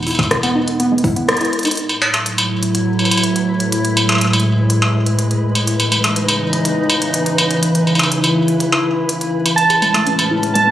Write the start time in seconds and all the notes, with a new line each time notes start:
Already playing: E1
0.03 struck metal
0.07 E4, open hi-hat, struck metal
0.11 struck metal
0.15 kick, struck metal
0.19 closed hi-hat, struck metal
0.23 struck metal
0.31 G#3, cross-stick, closed hi-hat
0.43 B3, closed hi-hat, struck metal
0.55 D#4
0.68 closed hi-hat
0.80 B3, closed hi-hat
0.92 G#3
0.98 closed hi-hat
1.04 E4, kick, open hi-hat
1.16 B3, closed hi-hat
1.28 G#3, cross-stick, closed hi-hat
1.37 closed hi-hat
1.41 E4, closed hi-hat
1.45 closed hi-hat
1.53 closed hi-hat
1.59 closed hi-hat
1.63 closed hi-hat
1.65 D#4, closed hi-hat, struck metal
1.67 closed hi-hat
1.71 closed hi-hat
1.75 F#3 E4, closed hi-hat
1.77 A2 B4, closed hi-hat
1.79 closed hi-hat
1.89 struck metal
2.02 struck metal
2.14 closed hi-hat, struck metal
2.26 closed hi-hat
2.38 closed hi-hat, struck metal
2.63 closed hi-hat
2.75 closed hi-hat
2.99 struck metal
3.05 struck metal
3.11 closed hi-hat, struck metal
3.17 struck metal
3.24 closed hi-hat
3.36 closed hi-hat
3.60 closed hi-hat
3.72 G#3, closed hi-hat
3.85 closed hi-hat
3.97 struck metal
4.09 closed hi-hat, struck metal
4.12 struck metal
4.15 struck metal
4.18 closed hi-hat, struck metal
4.21 struck metal
4.24 struck metal
4.27 struck metal
4.30 struck metal
4.33 struck metal
4.40 closed hi-hat
4.70 closed hi-hat
4.82 struck metal
5.06 closed hi-hat
5.19 closed hi-hat
5.31 closed hi-hat
5.55 closed hi-hat, struck metal
5.67 C#3 E3 D#4, closed hi-hat
5.80 closed hi-hat, struck metal
5.92 struck metal
6.04 closed hi-hat, struck metal
6.16 closed hi-hat
6.29 closed hi-hat, struck metal
6.53 closed hi-hat
6.65 closed hi-hat
6.90 struck metal
7.02 closed hi-hat
7.14 closed hi-hat
7.26 closed hi-hat
7.38 struck metal
7.51 closed hi-hat
7.63 E4, closed hi-hat
7.75 closed hi-hat
7.87 struck metal
7.95 struck metal
7.99 closed hi-hat, struck metal
8.03 struck metal
8.12 closed hi-hat
8.24 closed hi-hat, struck metal
8.48 closed hi-hat
8.60 closed hi-hat
8.72 struck metal
9.09 closed hi-hat
9.21 closed hi-hat
9.46 closed hi-hat, struck metal
9.56 A2 G#3 C#4 A5, closed hi-hat
9.70 G#4, closed hi-hat, struck metal
9.82 G#3, struck metal
9.94 A3, closed hi-hat, struck metal
10.07 C#4, closed hi-hat
10.19 closed hi-hat, struck metal
10.31 E4
10.43 closed hi-hat
10.54 G#3 A5, closed hi-hat
10.67 A3